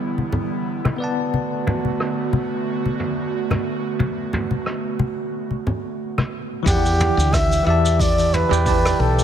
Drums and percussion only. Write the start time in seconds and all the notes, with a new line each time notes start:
0.18 high conga
0.33 low conga
0.85 cross-stick, high conga
1.34 high conga
1.67 mid tom, low conga
1.85 high conga
2.00 cross-stick
2.33 high conga
2.86 high conga
3.00 mid tom
3.51 cross-stick, high conga, low conga
3.99 mid tom, high conga
4.33 mid tom, low conga
4.51 high conga
4.66 cross-stick
4.99 high conga
5.51 high conga
5.67 low conga
6.18 cross-stick, high conga
6.66 kick, mid tom, open hi-hat, shaker
6.86 open hi-hat, shaker
7.00 mid tom
7.18 open hi-hat, shaker
7.33 kick, cross-stick, open hi-hat, shaker
7.51 open hi-hat, shaker
7.84 open hi-hat, shaker
8.00 kick, open hi-hat, shaker
8.18 open hi-hat, shaker
8.34 mid tom
8.53 shaker
8.66 kick, open hi-hat, shaker
8.85 cross-stick, open hi-hat, shaker
9.18 open hi-hat, shaker